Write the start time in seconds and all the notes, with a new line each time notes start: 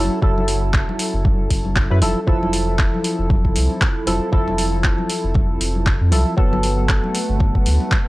Already playing: F#3 C#4 E4 A4 E5 F#5
0.22 F#1 F#3 E4 A4, kick
0.38 high conga
0.48 open hi-hat
0.74 kick, clap
0.89 high conga
0.99 open hi-hat
1.14 F#1
1.25 kick, high conga
1.51 F#1, kick, open hi-hat
1.65 high conga
1.76 kick, clap
1.91 F#2 F#3 E4 B4
2.01 F1 F3 C4 E4 A4, open hi-hat, high conga
2.27 F1 F3 E4 A4, kick
2.43 high conga
2.53 open hi-hat
2.79 kick, clap
2.94 high conga
3.04 open hi-hat
3.19 F1
3.30 kick, high conga
3.45 kick
3.56 C2, open hi-hat
3.70 high conga
3.81 kick, clap
4.07 F1 F3 E4 A4, open hi-hat, high conga
4.32 F1 F3 E4 A4, kick
4.48 high conga
4.58 open hi-hat
4.84 kick, clap
4.98 high conga
5.10 open hi-hat
5.24 F1
5.34 kick, high conga
5.61 F1, open hi-hat
5.75 high conga
5.86 kick, clap
6.01 F2
6.12 C2 F3 E4 A4, open hi-hat, high conga
6.37 G1 F#3 A3 B3 A4 B4 F#5, kick
6.53 high conga
6.63 open hi-hat
6.89 kick, clap
7.04 high conga
7.15 open hi-hat
7.29 G1
7.40 kick, high conga
7.55 kick
7.66 D2, open hi-hat
7.80 high conga
7.92 kick, clap